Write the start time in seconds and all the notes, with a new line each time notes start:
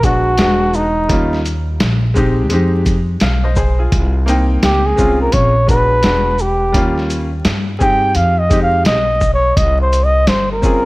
Already playing: A#1
0.03 G#3 B3 D4 F#4, kick, closed hi-hat, shaker
0.38 E1 G#3 B3 D4 F#4, snare, closed hi-hat
0.74 D#4, shaker
1.08 D#2 G3 A#3 C#4 F4, kick, closed hi-hat
1.33 snare
1.46 closed hi-hat, shaker
1.80 A#1, snare, closed hi-hat
2.14 G#3 C4 D#4 G4, kick, shaker
2.49 F2 G#3 C4 D#4 G4, closed hi-hat
2.86 kick, closed hi-hat, shaker
3.20 B1 F5, snare, closed hi-hat
3.44 C5 D#5
3.56 G#4 C5, kick, shaker
3.79 F4 G#4
3.92 C2, kick, closed hi-hat
4.26 A#3 C4 D#4 G5, closed hi-hat, shaker
4.63 C#2 G4, snare, closed hi-hat
4.86 G#4
4.96 C2 G#3 C4 C#4 F4, kick, shaker
5.21 A#4
5.32 A#1 C#5, kick, closed hi-hat
5.67 G#3 B3 D4 F#4 B4, kick, closed hi-hat, shaker
6.02 E1 G#3 B3 D4 F#4, snare, closed hi-hat
6.38 G4, shaker
6.72 D#2 G3 A#3 C#4 F4, kick, closed hi-hat
6.98 snare
7.10 closed hi-hat, shaker
7.45 G2, snare, closed hi-hat
7.79 C4 D#4 G4 G#4 G5, kick, shaker
8.15 F2 F5, closed hi-hat
8.39 D#5
8.49 G#3 C4 D#4 G4, kick, closed hi-hat, shaker
8.63 F5
8.85 B1 D#5, snare, closed hi-hat
9.21 kick, shaker
9.34 C#5
9.57 C2 D#5, kick, closed hi-hat
9.82 C5
9.93 closed hi-hat, shaker
10.04 D#5
10.27 G1 C5, snare, closed hi-hat
10.52 A#4
10.62 C4 C#4 F4 G#4, kick, shaker